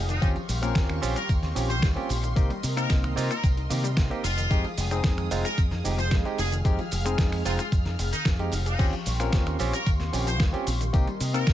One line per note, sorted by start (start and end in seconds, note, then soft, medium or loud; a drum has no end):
0.00 0.18 F1 medium
0.00 0.18 G#4 medium
0.00 2.32 F5 medium
0.00 0.18 D#6 medium
0.09 0.14 D#3 medium
0.09 0.28 D#4 medium
0.09 closed hi-hat soft
0.09 tambourine soft
0.09 shaker soft
0.21 0.34 D#2 loud
0.21 0.28 D#3 medium
0.21 0.35 C4 medium
0.21 0.36 C#4 medium
0.21 0.36 F4 medium
0.21 2.34 G4 medium
0.21 0.36 G4 loud
0.21 4.20 C6 medium
0.21 2.34 C#6 medium
0.21 kick loud
0.21 closed hi-hat soft
0.21 tambourine medium
0.21 shaker soft
0.36 0.44 F3 loud
0.36 closed hi-hat soft
0.36 tambourine soft
0.49 0.71 A#1 loud
0.49 0.52 G3 medium
0.49 open hi-hat loud
0.49 tambourine medium
0.49 shaker medium
0.62 0.70 A#3 medium
0.62 0.99 C4 medium
0.62 0.99 C#4 medium
0.62 0.99 F4 medium
0.62 1.00 A#4 loud
0.62 finger snap medium
0.62 closed hi-hat medium
0.62 tambourine soft
0.62 shaker soft
0.75 0.98 D#2 medium
0.75 0.84 C4 medium
0.75 kick loud
0.75 snare loud
0.75 closed hi-hat soft
0.75 tambourine soft
0.75 shaker soft
0.89 0.93 D#3 medium
0.89 finger snap medium
0.89 closed hi-hat soft
0.89 tambourine soft
1.02 1.14 A#1 medium
1.02 1.06 F3 medium
1.02 1.16 C4 loud
1.02 1.16 C#4 medium
1.02 1.16 F4 medium
1.02 1.16 G4 loud
1.02 open hi-hat loud
1.02 tambourine medium
1.02 shaker medium
1.16 1.19 G3 medium
1.16 1.32 A#4 medium
1.16 finger snap medium
1.16 closed hi-hat soft
1.16 tambourine soft
1.16 shaker soft
1.29 1.52 D#2 medium
1.29 1.35 A#3 medium
1.29 kick loud
1.29 closed hi-hat medium
1.29 tambourine medium
1.29 shaker soft
1.43 1.51 C4 medium
1.43 snare soft
1.43 closed hi-hat soft
1.43 tambourine soft
1.55 1.83 A#1 loud
1.55 1.62 D#3 loud
1.55 1.69 C4 medium
1.55 1.70 C#4 medium
1.55 1.70 F4 medium
1.55 1.70 G4 medium
1.55 open hi-hat loud
1.55 tambourine loud
1.55 shaker medium
1.69 1.78 F3 loud
1.69 1.85 C5 loud
1.69 closed hi-hat medium
1.69 tambourine soft
1.69 shaker soft
1.82 1.94 D#2 medium
1.82 1.88 G3 loud
1.82 kick loud
1.82 snare loud
1.82 closed hi-hat medium
1.82 tambourine medium
1.82 shaker soft
1.96 2.04 A#3 medium
1.96 2.09 C4 loud
1.96 2.10 C#4 medium
1.96 2.10 F4 medium
1.96 2.10 G4 loud
1.96 closed hi-hat soft
1.96 tambourine soft
2.09 2.32 A#1 medium
2.09 2.13 C4 medium
2.09 open hi-hat loud
2.09 tambourine medium
2.09 shaker medium
2.23 2.28 D#3 medium
2.23 closed hi-hat soft
2.23 tambourine soft
2.23 shaker soft
2.36 2.48 C2 loud
2.36 2.42 D#3 medium
2.36 2.50 A#3 loud
2.36 2.50 C4 medium
2.36 2.50 D#4 medium
2.36 2.50 G4 loud
2.36 4.22 A#4 medium
2.36 4.22 D#5 medium
2.36 kick loud
2.36 closed hi-hat medium
2.36 tambourine soft
2.36 shaker soft
2.50 2.58 G3 loud
2.50 closed hi-hat soft
2.50 tambourine soft
2.63 2.86 C3 loud
2.63 2.66 A#3 medium
2.63 open hi-hat loud
2.63 tambourine medium
2.63 shaker medium
2.76 3.13 A#3 medium
2.76 3.13 C4 medium
2.76 2.85 C4 loud
2.76 3.14 D#4 medium
2.76 3.14 A#4 medium
2.76 2.92 A#4 loud
2.76 finger snap medium
2.76 closed hi-hat medium
2.76 tambourine soft
2.76 shaker soft
2.90 3.12 C2 medium
2.90 2.98 D#4 medium
2.90 kick loud
2.90 snare loud
2.90 closed hi-hat medium
2.90 tambourine soft
2.90 shaker soft
3.04 3.07 D#3 medium
3.04 finger snap medium
3.04 closed hi-hat soft
3.04 tambourine soft
3.16 3.28 C3 medium
3.16 3.20 G3 medium
3.16 3.30 A#3 loud
3.16 3.30 C4 medium
3.16 3.31 D#4 medium
3.16 3.31 F4 loud
3.16 open hi-hat loud
3.16 tambourine medium
3.16 shaker medium
3.30 3.34 A#3 medium
3.30 3.46 A#4 medium
3.30 finger snap medium
3.30 closed hi-hat medium
3.30 tambourine soft
3.30 shaker soft
3.43 3.66 C2 medium
3.43 3.49 C4 medium
3.43 kick loud
3.43 closed hi-hat medium
3.43 tambourine medium
3.43 shaker soft
3.57 3.65 D#4 medium
3.57 closed hi-hat soft
3.57 tambourine soft
3.70 3.99 C3 loud
3.70 3.76 D#3 loud
3.70 3.84 A#3 medium
3.70 3.84 C4 medium
3.70 3.84 D#4 medium
3.70 3.84 G4 medium
3.70 open hi-hat loud
3.70 tambourine medium
3.70 shaker medium
3.84 3.92 G3 loud
3.84 closed hi-hat medium
3.84 tambourine soft
3.84 shaker soft
3.97 4.09 C2 medium
3.97 4.02 A#3 loud
3.97 kick loud
3.97 snare loud
3.97 closed hi-hat medium
3.97 tambourine medium
3.97 shaker soft
4.10 4.22 A#3 loud
4.10 4.22 C4 medium
4.10 4.19 C4 medium
4.10 4.22 D#4 medium
4.10 4.22 G4 loud
4.10 closed hi-hat soft
4.10 tambourine soft
4.23 4.46 F1 loud
4.23 4.27 D#4 medium
4.23 4.64 F4 loud
4.23 8.75 G#4 medium
4.23 10.89 F5 medium
4.23 6.36 D#6 medium
4.23 open hi-hat loud
4.23 tambourine medium
4.23 shaker medium
4.37 4.43 D#3 medium
4.37 closed hi-hat medium
4.37 tambourine soft
4.37 shaker soft
4.50 4.62 F2 loud
4.50 4.56 D#3 medium
4.50 4.64 G#3 loud
4.50 4.64 C4 medium
4.50 4.65 D#4 medium
4.50 4.65 G4 loud
4.50 kick loud
4.50 closed hi-hat medium
4.50 tambourine medium
4.50 shaker soft
4.64 4.72 F3 loud
4.64 closed hi-hat soft
4.64 tambourine soft
4.78 5.00 F1 loud
4.78 4.81 G#3 medium
4.78 open hi-hat loud
4.78 tambourine medium
4.78 shaker medium
4.91 5.28 G#3 medium
4.91 5.28 C4 medium
4.91 4.99 C4 loud
4.91 5.28 D#4 medium
4.91 5.28 G#4 loud
4.91 finger snap medium
4.91 closed hi-hat medium
4.91 tambourine soft
4.91 shaker soft
5.04 5.27 F2 medium
5.04 5.12 D#4 medium
5.04 kick loud
5.04 snare loud
5.04 closed hi-hat medium
5.04 tambourine medium
5.04 shaker soft
5.18 5.21 D#3 medium
5.18 finger snap medium
5.18 closed hi-hat soft
5.18 tambourine soft
5.31 5.43 F1 medium
5.31 5.34 F3 medium
5.31 5.45 G#3 loud
5.31 5.45 C4 medium
5.31 5.45 D#4 medium
5.31 5.45 F4 loud
5.31 open hi-hat loud
5.31 tambourine medium
5.31 shaker medium
5.45 5.48 G#3 medium
5.45 5.60 A#4 medium
5.45 finger snap medium
5.45 closed hi-hat medium
5.45 tambourine soft
5.45 shaker soft
5.58 5.80 F2 medium
5.58 5.63 C4 medium
5.58 kick loud
5.58 closed hi-hat medium
5.58 tambourine medium
5.58 shaker soft
5.71 5.79 D#4 medium
5.71 snare soft
5.71 closed hi-hat soft
5.71 tambourine soft
5.84 6.13 F1 loud
5.84 5.90 D#3 medium
5.84 5.98 G#3 medium
5.84 5.98 C4 medium
5.84 5.99 D#4 medium
5.84 5.99 G4 loud
5.84 open hi-hat loud
5.84 tambourine medium
5.84 shaker medium
5.98 6.06 F3 loud
5.98 6.14 C5 medium
5.98 closed hi-hat medium
5.98 tambourine soft
5.98 shaker soft
6.11 6.23 F2 medium
6.11 6.17 G#3 loud
6.11 kick loud
6.11 snare loud
6.11 closed hi-hat medium
6.11 tambourine soft
6.11 shaker soft
6.25 6.38 G#3 loud
6.25 6.33 C4 medium
6.25 6.39 C4 medium
6.25 6.39 D#4 medium
6.25 6.39 G4 loud
6.25 closed hi-hat soft
6.25 tambourine soft
6.38 6.61 F1 loud
6.38 6.41 D#4 medium
6.38 6.54 G#4 medium
6.38 8.77 F6 medium
6.38 open hi-hat loud
6.38 tambourine medium
6.38 shaker medium
6.52 6.57 D#3 medium
6.52 closed hi-hat medium
6.52 tambourine soft
6.52 shaker soft
6.65 6.76 F2 loud
6.65 6.71 D#3 medium
6.65 6.79 G#3 loud
6.65 6.79 C4 medium
6.65 6.79 D#4 medium
6.65 6.79 G4 loud
6.65 kick loud
6.65 closed hi-hat medium
6.65 tambourine medium
6.65 shaker soft
6.79 6.87 F3 loud
6.79 closed hi-hat soft
6.79 tambourine soft
6.91 7.14 F1 loud
6.91 6.95 G#3 medium
6.91 open hi-hat loud
6.91 tambourine medium
6.91 shaker medium
7.05 7.42 G#3 medium
7.05 7.42 C4 medium
7.05 7.13 C4 loud
7.05 7.42 D#4 medium
7.05 7.42 G#4 medium
7.05 finger snap medium
7.05 closed hi-hat medium
7.05 tambourine soft
7.05 shaker soft
7.18 7.41 F2 medium
7.18 7.27 D#4 medium
7.18 kick loud
7.18 snare loud
7.18 closed hi-hat medium
7.18 tambourine soft
7.18 shaker soft
7.32 7.35 D#3 medium
7.32 finger snap medium
7.32 open hi-hat medium
7.32 tambourine soft
7.45 7.57 F1 medium
7.45 7.49 F3 medium
7.45 7.59 G#3 loud
7.45 7.59 C4 medium
7.45 7.59 D#4 medium
7.45 7.54 F4 medium
7.45 7.60 F4 loud
7.45 open hi-hat loud
7.45 tambourine medium
7.45 shaker medium
7.58 7.62 G#3 medium
7.58 7.68 F4 medium
7.58 finger snap medium
7.58 closed hi-hat medium
7.58 tambourine soft
7.58 shaker soft
7.72 7.95 F2 medium
7.72 7.78 C4 medium
7.72 kick loud
7.72 closed hi-hat medium
7.72 tambourine soft
7.72 shaker soft
7.85 7.94 D#4 medium
7.85 snare soft
7.85 closed hi-hat soft
7.85 tambourine soft
7.99 8.10 F1 medium
7.99 8.02 C4 medium
7.99 open hi-hat loud
7.99 tambourine medium
7.99 shaker medium
8.13 8.18 D#3 medium
8.13 8.28 D#4 loud
8.13 muted fingered electric bass stroke soft
8.13 closed hi-hat medium
8.13 tambourine soft
8.13 shaker soft
8.25 8.48 F2 medium
8.25 8.31 F3 medium
8.25 kick loud
8.25 snare loud
8.25 closed hi-hat medium
8.25 tambourine soft
8.25 shaker soft
8.39 8.53 G#3 medium
8.39 8.43 C4 loud
8.39 8.53 C4 medium
8.39 8.53 D#4 medium
8.39 8.53 G4 loud
8.39 closed hi-hat soft
8.39 tambourine soft
8.52 8.75 F1 medium
8.52 8.58 D#3 medium
8.52 open hi-hat loud
8.52 tambourine medium
8.52 shaker medium
8.66 8.85 D#4 medium
8.66 8.69 G#4 medium
8.66 closed hi-hat medium
8.66 tambourine soft
8.66 shaker soft
8.79 8.91 D#2 loud
8.79 8.85 D#3 medium
8.79 8.93 C4 loud
8.79 8.93 C#4 medium
8.79 8.93 F4 medium
8.79 10.91 G4 medium
8.79 8.93 G4 loud
8.79 10.91 C6 medium
8.79 10.91 C#6 medium
8.79 kick loud
8.79 closed hi-hat medium
8.79 crash medium
8.79 tambourine medium
8.79 shaker soft
8.93 9.01 F3 loud
8.93 closed hi-hat soft
8.93 tambourine soft
9.06 9.29 A#1 loud
9.06 9.09 G3 medium
9.06 open hi-hat loud
9.06 tambourine medium
9.06 shaker medium
9.19 9.28 A#3 loud
9.19 9.56 C4 medium
9.19 9.57 C#4 medium
9.19 9.57 F4 medium
9.19 9.57 A#4 medium
9.19 finger snap medium
9.19 closed hi-hat medium
9.19 tambourine soft
9.19 shaker soft
9.33 9.55 D#2 medium
9.33 9.41 C4 medium
9.33 kick loud
9.33 snare loud
9.33 closed hi-hat medium
9.33 tambourine medium
9.33 shaker soft
9.46 9.50 D#3 medium
9.46 finger snap medium
9.46 closed hi-hat soft
9.46 tambourine soft
9.59 9.71 A#1 medium
9.59 9.63 F3 medium
9.59 9.73 C4 loud
9.59 9.73 C#4 medium
9.59 9.74 F4 medium
9.59 9.74 G4 loud
9.59 open hi-hat loud
9.59 tambourine medium
9.59 shaker medium
9.73 9.76 G3 medium
9.73 9.89 A#4 medium
9.73 finger snap medium
9.73 closed hi-hat medium
9.73 tambourine soft
9.73 shaker soft
9.86 10.09 D#2 medium
9.86 9.92 A#3 medium
9.86 kick loud
9.86 closed hi-hat medium
9.86 tambourine medium
9.86 shaker soft
10.00 10.08 C4 medium
10.00 snare soft
10.00 closed hi-hat soft
10.00 tambourine soft
10.13 10.40 A#1 loud
10.13 10.19 D#3 medium
10.13 10.27 C4 medium
10.13 10.27 C#4 medium
10.13 10.27 F4 medium
10.13 10.27 G4 medium
10.13 open hi-hat loud
10.13 tambourine medium
10.13 shaker medium
10.27 10.35 F3 loud
10.27 10.42 C5 loud
10.27 closed hi-hat medium
10.27 tambourine soft
10.27 shaker soft
10.40 10.52 D#2 medium
10.40 10.45 G3 loud
10.40 kick loud
10.40 snare loud
10.40 closed hi-hat medium
10.40 tambourine medium
10.40 shaker soft
10.53 10.61 A#3 medium
10.53 10.67 C4 medium
10.53 10.67 C#4 medium
10.53 10.67 F4 medium
10.53 10.67 G4 loud
10.53 closed hi-hat soft
10.53 tambourine soft
10.67 10.89 A#1 medium
10.67 10.70 C4 medium
10.67 open hi-hat loud
10.67 tambourine medium
10.67 shaker medium
10.80 10.86 D#3 medium
10.80 closed hi-hat medium
10.80 tambourine soft
10.80 shaker soft
10.93 11.05 C2 loud
10.93 10.99 D#3 medium
10.93 11.07 A#3 medium
10.93 11.07 C4 medium
10.93 11.07 D#4 medium
10.93 11.08 G4 loud
10.93 11.53 A#4 medium
10.93 11.53 D#5 medium
10.93 11.53 C6 medium
10.93 kick loud
10.93 closed hi-hat medium
10.93 tambourine medium
10.93 shaker soft
11.07 11.15 G3 loud
11.07 closed hi-hat soft
11.07 tambourine soft
11.20 11.43 C3 loud
11.20 11.24 A#3 medium
11.20 open hi-hat loud
11.20 tambourine medium
11.20 shaker medium
11.34 11.53 A#3 medium
11.34 11.53 C4 medium
11.34 11.42 C4 loud
11.34 11.53 D#4 medium
11.34 11.49 A#4 loud
11.34 11.53 A#4 loud
11.34 finger snap medium
11.34 closed hi-hat medium
11.34 tambourine soft
11.34 shaker soft
11.47 11.53 C2 medium
11.47 11.53 D#4 medium
11.47 kick loud
11.47 snare loud
11.47 closed hi-hat medium
11.47 tambourine medium
11.47 shaker soft